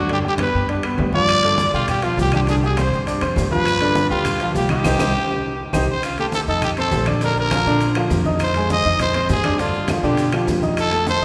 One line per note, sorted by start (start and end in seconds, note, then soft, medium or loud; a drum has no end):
0.00 0.49 G2 medium
0.09 0.22 D3 medium
0.09 0.22 D4 medium
0.09 0.22 D5 medium
0.09 high conga soft
0.09 high timbale medium
0.13 0.19 G4 medium
0.23 0.36 G3 medium
0.23 0.37 G4 medium
0.23 0.37 G5 medium
0.23 high conga soft
0.28 0.34 G4 medium
0.38 0.64 B3 medium
0.38 0.64 B4 medium
0.38 0.68 B4 medium
0.38 0.64 B5 medium
0.38 high conga loud
0.38 high timbale medium
0.38 low timbale medium
0.38 claves medium
0.53 0.96 G2 medium
0.53 high conga soft
0.69 0.81 D4 medium
0.69 0.81 D5 medium
0.69 0.82 D6 medium
0.69 high conga soft
0.69 high timbale medium
0.83 1.08 B3 medium
0.83 1.09 B4 medium
0.83 1.09 B5 medium
0.83 high conga soft
0.83 high timbale medium
0.83 claves medium
0.98 1.68 G2 medium
0.98 high conga medium
0.98 low timbale medium
1.13 1.38 F3 medium
1.13 1.38 F4 medium
1.13 1.70 D5 loud
1.13 1.39 F5 medium
1.13 high conga medium
1.28 high conga soft
1.28 high timbale loud
1.28 claves medium
1.28 maracas medium
1.43 1.68 D3 medium
1.43 1.68 D4 medium
1.43 1.68 D5 medium
1.43 high conga soft
1.43 high timbale medium
1.43 maracas soft
1.58 high conga medium
1.58 low timbale medium
1.58 maracas medium
1.73 2.15 B2 medium
1.73 1.98 G3 medium
1.73 1.88 F4 medium
1.73 1.98 G4 medium
1.73 1.98 G5 medium
1.73 high conga soft
1.73 maracas soft
1.88 2.05 G4 medium
1.88 high conga soft
1.88 low conga medium
1.88 high timbale medium
1.88 claves medium
1.88 maracas medium
2.02 2.27 F3 medium
2.02 2.27 F4 medium
2.02 2.18 F4 medium
2.02 2.28 F5 medium
2.02 high conga soft
2.02 high timbale medium
2.02 maracas soft
2.17 2.87 C2 medium
2.17 2.33 G4 medium
2.17 high conga medium
2.17 low timbale medium
2.17 maracas medium
2.32 2.45 D4 medium
2.32 2.41 G4 medium
2.32 2.45 D5 medium
2.32 2.46 D6 medium
2.32 high conga medium
2.32 high timbale medium
2.32 claves medium
2.32 maracas soft
2.47 2.60 D3 medium
2.47 2.60 D4 medium
2.47 2.56 G#4 medium
2.47 2.60 D5 medium
2.47 high conga soft
2.47 high timbale medium
2.47 maracas medium
2.63 2.75 G3 medium
2.63 2.75 G4 medium
2.63 2.78 G#4 medium
2.63 2.75 G5 medium
2.63 high conga soft
2.63 maracas soft
2.77 3.02 C4 medium
2.77 3.02 C5 medium
2.77 3.06 C5 medium
2.77 3.02 C6 medium
2.77 high conga medium
2.77 high timbale medium
2.77 low timbale medium
2.77 claves medium
2.77 maracas medium
2.92 3.20 G2 medium
2.92 high conga soft
2.92 maracas soft
3.07 3.19 D4 medium
3.07 3.19 D5 medium
3.07 3.20 D6 medium
3.07 high conga soft
3.07 high timbale medium
3.07 maracas medium
3.21 3.36 F2 medium
3.21 3.46 C4 medium
3.21 3.46 C5 medium
3.21 3.46 C6 medium
3.21 high conga soft
3.21 high timbale medium
3.21 claves medium
3.21 maracas soft
3.36 4.06 G2 loud
3.36 high conga medium
3.36 low timbale medium
3.36 maracas medium
3.51 3.76 F3 medium
3.51 3.76 F4 medium
3.51 4.07 B4 loud
3.51 3.76 F5 medium
3.51 high conga medium
3.51 maracas soft
3.66 high conga soft
3.66 high timbale medium
3.66 claves medium
3.66 maracas medium
3.80 4.05 D3 medium
3.80 4.05 D4 medium
3.80 4.06 D5 medium
3.80 high conga soft
3.80 high timbale medium
3.80 maracas soft
3.95 high conga loud
3.95 low timbale medium
3.95 maracas medium
4.10 4.52 D2 medium
4.10 4.35 G3 medium
4.10 4.52 F4 medium
4.10 4.35 G4 medium
4.10 4.35 G5 medium
4.10 high conga soft
4.10 maracas soft
4.25 high conga soft
4.25 low conga medium
4.25 high timbale medium
4.25 claves medium
4.25 maracas medium
4.39 4.65 F3 medium
4.39 4.65 F4 medium
4.39 4.65 F5 medium
4.39 high conga soft
4.39 high timbale medium
4.39 maracas soft
4.54 4.83 C2 medium
4.54 4.70 G4 medium
4.54 high conga medium
4.54 low timbale medium
4.54 maracas medium
4.69 4.82 D#4 medium
4.69 5.70 G4 medium
4.69 4.82 D#5 medium
4.69 4.82 D#6 medium
4.69 high conga medium
4.69 high timbale medium
4.69 claves medium
4.69 maracas soft
4.84 4.96 C2 medium
4.84 4.94 D#4 loud
4.84 4.94 G4 medium
4.84 4.94 C5 medium
4.84 high conga loud
4.84 high timbale medium
4.84 claves loud
4.84 maracas loud
4.99 5.11 C2 loud
4.99 5.09 D#4 medium
4.99 5.09 G4 loud
4.99 5.09 C5 medium
4.99 high conga medium
4.99 high timbale loud
4.99 claves medium
4.99 maracas loud
5.73 5.85 C2 medium
5.73 5.83 D#4 loud
5.73 5.83 G4 medium
5.73 5.83 C5 loud
5.73 high conga loud
5.73 high timbale medium
5.73 claves medium
5.73 maracas loud
5.91 6.04 C5 loud
6.03 6.18 F4 medium
6.03 high conga soft
6.03 high timbale medium
6.03 claves medium
6.03 maracas medium
6.18 6.43 A3 medium
6.18 6.26 G4 medium
6.18 6.43 A4 medium
6.18 6.43 A5 medium
6.18 high conga soft
6.18 high timbale medium
6.18 maracas soft
6.32 6.41 A4 medium
6.32 high conga medium
6.32 low timbale medium
6.32 maracas medium
6.47 6.89 F2 medium
6.47 6.72 D#4 medium
6.47 6.62 A4 medium
6.47 6.72 D#5 medium
6.47 6.73 D#6 medium
6.47 high conga soft
6.47 maracas soft
6.62 6.70 G4 medium
6.62 high conga soft
6.62 low conga medium
6.62 high timbale medium
6.62 claves medium
6.62 maracas medium
6.77 7.02 C4 medium
6.77 7.06 A4 medium
6.77 7.02 C5 medium
6.77 7.03 C6 medium
6.77 high conga soft
6.77 high timbale medium
6.77 maracas soft
6.91 7.61 A#1 medium
6.91 high conga medium
6.91 low timbale medium
6.91 maracas medium
7.06 7.19 D4 medium
7.06 7.19 D5 medium
7.06 7.20 D6 medium
7.06 high conga medium
7.06 high timbale medium
7.06 claves medium
7.06 maracas soft
7.21 7.47 D3 medium
7.21 7.47 D4 medium
7.21 7.37 A#4 loud
7.21 7.47 D5 medium
7.21 high conga soft
7.21 high timbale medium
7.21 maracas medium
7.37 7.94 A#4 loud
7.37 high conga soft
7.37 maracas soft
7.51 7.64 F3 medium
7.51 7.64 F4 medium
7.51 7.65 F5 medium
7.51 high conga loud
7.51 high timbale medium
7.51 low timbale medium
7.51 claves medium
7.51 maracas medium
7.66 8.08 A#2 medium
7.66 7.91 D3 medium
7.66 7.91 D4 medium
7.66 7.91 D5 medium
7.66 high conga soft
7.66 maracas soft
7.81 high conga soft
7.81 high timbale medium
7.81 maracas medium
7.95 8.21 F3 medium
7.95 8.21 F4 medium
7.95 8.21 F5 medium
7.95 high conga soft
7.95 high timbale loud
7.95 claves medium
7.95 maracas soft
8.10 8.79 F2 medium
8.10 high conga medium
8.10 low timbale medium
8.10 maracas medium
8.25 8.50 D#4 medium
8.25 8.50 D#5 medium
8.25 8.50 D#6 medium
8.25 high conga medium
8.25 maracas soft
8.39 8.69 C5 medium
8.39 high conga soft
8.39 high timbale medium
8.39 claves medium
8.39 maracas medium
8.54 8.80 G#3 medium
8.54 8.80 G#4 medium
8.54 8.80 G#5 medium
8.54 high conga soft
8.54 high timbale medium
8.54 maracas soft
8.69 8.99 D#5 loud
8.69 high conga loud
8.69 low timbale medium
8.69 maracas medium
8.85 9.26 F2 medium
8.85 9.09 D#4 medium
8.85 9.10 D#5 medium
8.85 9.10 D#6 medium
8.85 high conga soft
8.85 maracas soft
8.99 9.28 C5 loud
8.99 high conga soft
8.99 low conga medium
8.99 high timbale medium
8.99 claves medium
8.99 maracas medium
9.14 9.39 C4 medium
9.14 9.39 C5 medium
9.14 9.39 C6 medium
9.14 high conga soft
9.14 high timbale medium
9.14 maracas soft
9.29 9.98 G2 medium
9.29 9.61 G#4 loud
9.29 high conga medium
9.29 low timbale medium
9.29 maracas medium
9.44 9.57 D4 medium
9.44 9.57 D5 medium
9.44 9.57 D6 medium
9.44 high conga medium
9.44 high timbale medium
9.44 claves medium
9.44 maracas soft
9.59 9.84 D3 medium
9.59 9.84 D4 medium
9.59 9.89 F4 medium
9.59 9.84 D5 medium
9.59 high conga soft
9.59 high timbale medium
9.59 maracas medium
9.74 high conga soft
9.74 maracas soft
9.88 10.01 F3 medium
9.88 10.01 F4 medium
9.88 10.01 F5 medium
9.88 high conga loud
9.88 high timbale medium
9.88 low timbale medium
9.88 claves medium
9.88 maracas medium
10.03 10.44 B2 medium
10.03 10.28 D3 medium
10.03 10.28 D4 medium
10.03 10.45 G4 medium
10.03 10.28 D5 medium
10.03 high conga soft
10.03 maracas soft
10.17 high conga soft
10.17 high timbale medium
10.17 maracas medium
10.32 10.57 F3 medium
10.32 10.58 F4 medium
10.32 10.58 F5 medium
10.32 high conga soft
10.32 high timbale loud
10.32 claves medium
10.32 maracas soft
10.47 11.16 F2 medium
10.47 high conga medium
10.47 low timbale medium
10.47 maracas medium
10.62 10.87 D#4 medium
10.62 10.87 D#5 medium
10.62 10.87 D#6 medium
10.62 high conga medium
10.62 maracas soft
10.77 11.06 A4 loud
10.77 high conga soft
10.77 high timbale medium
10.77 claves medium
10.77 maracas medium
10.91 11.16 A3 medium
10.91 11.17 A4 medium
10.91 11.17 A5 medium
10.91 high conga soft
10.91 high timbale medium
10.91 maracas soft
11.06 11.25 C5 loud
11.06 high conga medium
11.06 low timbale medium
11.06 maracas medium